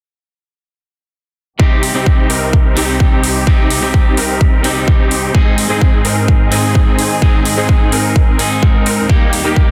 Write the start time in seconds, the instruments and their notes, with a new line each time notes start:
1.59 string section C2 C3 D#4 G4, clean electric guitar C3 G3 C4 D#4 G4, supersaw synth C4 D#4 G4, kick
1.83 open hi-hat
1.94 clean electric guitar C3 G3 C4 D#4 G4, supersaw synth C4 D#4 G4
2.06 kick
2.30 supersaw synth C4 D#4 A#4, open hi-hat
2.53 kick
2.75 clean electric guitar C3 G3 C4 D#4 G4, supersaw synth C4 D#4 G4, open hi-hat
3.00 kick
3.12 supersaw synth C4 D#4 G4
3.23 open hi-hat
3.46 clean electric guitar C3 G3 C4 D#4 G4, supersaw synth C4 D#4 G4, kick
3.70 open hi-hat
3.81 clean electric guitar C3 G3 C4 D#4 G4, supersaw synth C4 D#4 G4
3.94 kick
4.17 supersaw synth C4 D#4 A#4, open hi-hat
4.41 kick
4.63 clean electric guitar C3 G3 C4 D#4 G4, supersaw synth C4 D#4 G4, open hi-hat
4.88 kick
5.00 supersaw synth C4 D#4 G4
5.11 open hi-hat
5.34 clean electric guitar G#2 G#3 C4 D#4 G#4, string section G#2 D#3 C4 G#4, supersaw synth C4 D#4 G#4, kick
5.58 open hi-hat
5.69 clean electric guitar G#2 G#3 C4 D#4 G#4, supersaw synth C4 D#4 G#4
5.81 kick
6.05 supersaw synth C4 D#4 A#4, open hi-hat
6.28 kick
6.51 clean electric guitar G#2 G#3 C4 D#4 G#4, supersaw synth C4 D#4 G#4, open hi-hat
6.75 kick
6.87 supersaw synth C4 D#4 G#4
6.99 open hi-hat
7.21 clean electric guitar G#2 G#3 C4 D#4 G#4, supersaw synth C4 D#4 G#4, kick
7.45 open hi-hat
7.56 clean electric guitar G#2 G#3 C4 D#4 G#4, supersaw synth C4 D#4 G#4
7.69 kick
7.92 supersaw synth C4 D#4 A#4, open hi-hat
8.16 kick
8.38 clean electric guitar G#2 G#3 C4 D#4 G#4, open hi-hat
8.63 supersaw synth C4 D#4 A#4, kick
8.86 supersaw synth C4 D#4 A#4, open hi-hat
9.09 string section D#2 D#3 A#3 G4, clean electric guitar G3 A#3 D#4 G4, supersaw synth A#3 D#4 G4, kick
9.33 open hi-hat
9.43 clean electric guitar G3 A#3 D#4 G4, supersaw synth A#3 D#4 G4
9.56 kick